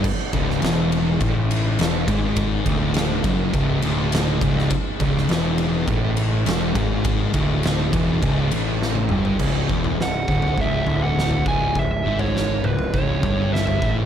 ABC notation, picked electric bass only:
X:1
M:4/4
L:1/8
Q:1/4=102
K:C#m
V:1 name="Picked electric bass" clef=bass
z C,,, E,,,2 A,,,2 E,,, G,,,- | G,,, =D,,,2 F,,, C,,, D,,,2 C,,, | z C,,, E,,,2 A,,,2 E,,, G,,,- | G,,, =D,,,2 E,,, C,,, A,,,2 =G,,, |
C,,, E,,, C,,, =D,,, C,,, D,,,2 C,,, | C,,, G,,,2 C,,, C,,, =G,,,2 A,,, |]